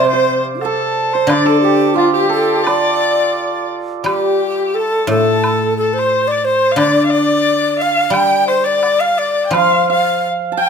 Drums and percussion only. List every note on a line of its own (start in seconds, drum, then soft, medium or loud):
0.61 low woodblock soft
1.29 high woodblock medium
1.99 low woodblock soft
2.67 high woodblock medium
4.06 high woodblock medium
5.44 high woodblock medium
6.78 high woodblock medium
8.14 high woodblock medium
8.83 high woodblock soft
8.83 low woodblock soft
9.53 high woodblock medium